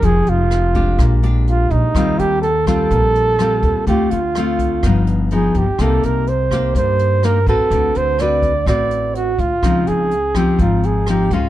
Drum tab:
HH |xxxxxxxx|xxxxxxxx|xxxxxxxx|xxxxxxxx|
SD |--r-r---|r--r--r-|--r-r---|r--r--r-|
BD |o--oo--o|o--oo--o|o--oo--o|o--oo--o|

HH |xxxxxxxx|xxxxxxxx|
SD |--r-r---|r--r--r-|
BD |o--oo--o|o--oo--o|